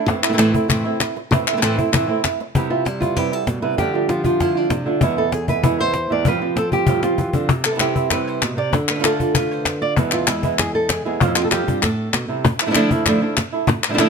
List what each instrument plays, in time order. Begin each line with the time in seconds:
0.06 nylon-string guitar A2 E3 A3 C4 E4, muted nylon-string guitar stroke, cajon bass, cajon slap
0.22 nylon-string guitar A3 C4 E4, clap
0.29 nylon-string guitar E3 A3 C4 E4
0.33 nylon-string guitar E3 A3 C4 E4
0.38 nylon-string guitar A2 E3 A3 C4 E4, cajon slap, clap
0.53 nylon-string guitar A3 C4 E4, cajon bass
0.68 nylon-string guitar A2 E3 A3 C4 E4, cajon bass, clap
0.85 nylon-string guitar A3 C4 E4
1.00 muted nylon-string guitar stroke, cajon slap, clap
1.16 muted nylon-string guitar stroke, cajon slap
1.31 nylon-string guitar A2 E3 A3 C4 E4, muted nylon-string guitar stroke, cajon bass
1.47 nylon-string guitar A3 C4 E4, clap
1.53 nylon-string guitar E3 A3 C4 E4
1.57 nylon-string guitar E3 A3 C4 E4
1.62 nylon-string guitar A2 E3 A3 C4 E4, cajon slap, clap
1.78 nylon-string guitar A3 C4 E4, cajon bass
1.92 nylon-string guitar A2 E3 A3 C4 E4, cajon bass, clap
2.07 nylon-string guitar A3 C4 E4
2.24 muted nylon-string guitar stroke, cajon bass, cajon slap, clap
2.40 muted nylon-string guitar stroke, cajon slap
2.55 nylon-string guitar C3 E3 G3 B3 E4 G4, cajon bass
2.70 nylon-string guitar G3 B3 E4 F4
2.85 nylon-string guitar G3 E4, muted nylon-string guitar stroke, cajon slap
3.00 nylon-string guitar G3 B3 E4 F4, cajon bass
3.16 nylon-string guitar C3 E3 G3 B3 E4 G4, cajon bass, cajon slap
3.31 nylon-string guitar G3 B3 E4 A4
3.47 nylon-string guitar B2, muted nylon-string guitar stroke, cajon bass, cajon slap
3.62 nylon-string guitar C3 G3 B3 E4 B4
3.77 nylon-string guitar D3 F3 G3 A3 D4 F4 G4, cajon bass, cajon slap
3.93 nylon-string guitar G3 A3 D4 F4
4.09 nylon-string guitar F3 F4, muted nylon-string guitar stroke, cajon slap
4.24 nylon-string guitar A3 D4 F4, cajon bass
4.40 nylon-string guitar D3 A3 D4 E4 F4, cajon bass, cajon slap
4.55 nylon-string guitar A3 D4 F4
4.70 nylon-string guitar C3, muted nylon-string guitar stroke, cajon bass, cajon slap
4.86 nylon-string guitar D3 A3 D4 F4
5.01 nylon-string guitar E2 B2 E3 G#3 B3 E4 E5, cajon bass
5.17 nylon-string guitar E3 G#3 B3 E4 A4
5.32 nylon-string guitar G#4, muted nylon-string guitar stroke, cajon slap
5.48 nylon-string guitar E3 G#3 B3 E4 B4, cajon bass
5.63 nylon-string guitar E2 B2 E3 G#3 B3 E4, cajon bass
5.79 nylon-string guitar E3 G#3 B3 E4 C5
5.94 muted nylon-string guitar stroke, cajon slap
6.10 nylon-string guitar E2 E3 G#3 B3 E4 D5
6.25 nylon-string guitar F2 A2 F3 G3 C4 F4 B4, cajon bass
6.41 nylon-string guitar F3 G3 C4 F4
6.56 nylon-string guitar C4 A4, muted nylon-string guitar stroke, cajon slap
6.72 nylon-string guitar F3 G3 C4 F4 G4, cajon bass
6.87 nylon-string guitar F2 A2 F3 G3 C4 F4, cajon bass
7.02 nylon-string guitar F3 G3 C4 F4, cajon slap
7.18 nylon-string guitar E3, muted nylon-string guitar stroke, cajon bass
7.33 nylon-string guitar D3 F3 G3 C4 F4, cajon bass
7.49 nylon-string guitar C3, muted nylon-string guitar stroke, cajon bass
7.64 nylon-string guitar A4, clap
7.71 nylon-string guitar E3 G3 B3 E4
7.75 nylon-string guitar E3 G3 B3 E4
7.80 nylon-string guitar C3 E3 G3 B3 C4 E4 G4, cajon slap, clap
7.96 nylon-string guitar G3 B3 E4, cajon bass
8.11 nylon-string guitar C3 E3 G3 E4 B4, cajon bass, cajon slap, clap
8.27 nylon-string guitar C5
8.42 nylon-string guitar B2, muted nylon-string guitar stroke, cajon slap, clap
8.57 nylon-string guitar C3 D5
8.73 nylon-string guitar D3, muted nylon-string guitar stroke, cajon bass
8.88 nylon-string guitar B4, clap
8.95 nylon-string guitar D3 A3 D4 F4
8.99 nylon-string guitar D3 A3 D4 F4
9.04 nylon-string guitar D3 A3 D4 F4 A4, cajon slap, clap
9.20 nylon-string guitar A3 D4 F4, cajon bass
9.35 nylon-string guitar D3 A3 D4 F4 B4, cajon bass, clap
9.51 nylon-string guitar C5
9.65 muted nylon-string guitar stroke, cajon bass, cajon slap, clap
9.81 nylon-string guitar F4 D5
9.97 nylon-string guitar E2 B2 E3 G#3 B3 E4 B4, cajon bass
10.11 nylon-string guitar E3 G#3 B3 E4 F4, clap
10.27 nylon-string guitar E3 G#3 B3 E4, cajon slap, clap
10.43 nylon-string guitar E3 G#3 B3 E4, cajon bass
10.59 nylon-string guitar G#4, muted nylon-string guitar stroke, cajon bass, cajon slap, clap
10.75 nylon-string guitar A4
10.89 nylon-string guitar G#4, cajon bass, cajon slap, clap
11.05 nylon-string guitar E2 E3 G#3 B3 E4 G#4
11.21 nylon-string guitar F2 A2 F3 G3 C4 F4, cajon bass
11.27 nylon-string guitar E4
11.35 nylon-string guitar F3 G3 C4 F4, clap
11.44 nylon-string guitar A4
11.51 nylon-string guitar F2 F3 G3 C4 F4 G4, cajon slap, clap
11.67 nylon-string guitar G2 F3 G3 C4 F4, cajon bass
11.82 nylon-string guitar A2 A4, muted nylon-string guitar stroke, cajon bass, cajon slap, clap
12.13 nylon-string guitar B2, cajon slap, clap
12.28 nylon-string guitar C3 G3 C4 E4, cajon slap
12.44 muted nylon-string guitar stroke, cajon bass
12.60 nylon-string guitar F3 A3 D4 E4, clap
12.65 nylon-string guitar F3 A3 D4 E4
12.70 nylon-string guitar F3 A3 D4 E4
12.74 nylon-string guitar D3 F3 A3 D4 E4, cajon slap, clap
12.91 nylon-string guitar A3 D4 E4, cajon bass
13.06 nylon-string guitar D3 F3 A3 D4 E4, cajon bass, cajon slap, clap
13.22 nylon-string guitar A3 D4 E4
13.37 muted nylon-string guitar stroke, cajon bass, cajon slap, clap
13.52 nylon-string guitar A3 D4 E4, cajon slap
13.67 muted nylon-string guitar stroke, cajon bass
13.84 clap
13.88 nylon-string guitar F3 A3 D4 E4
13.93 nylon-string guitar F3 A3 D4 E4
13.98 nylon-string guitar D3 F3 A3 D4 E4, cajon slap, clap